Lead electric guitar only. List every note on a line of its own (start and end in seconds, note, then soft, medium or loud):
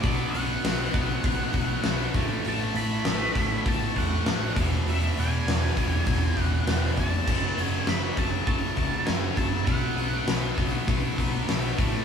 0.01 0.33 D5 medium
0.30 2.09 F#5 loud
2.49 2.78 A5 loud
2.76 3.69 B5 loud
3.69 3.98 A5 loud
3.98 4.53 F#5 medium
4.90 5.19 E5 medium
5.20 6.41 G#5 loud
6.41 6.99 F#5 loud
7.00 7.62 A5 loud
7.62 7.91 G#5 loud
7.89 8.19 B5 loud
8.18 8.46 A5 loud
8.48 9.06 A5 medium
9.06 9.37 G#5 loud
9.37 9.65 A5 loud
9.66 10.23 F#5 medium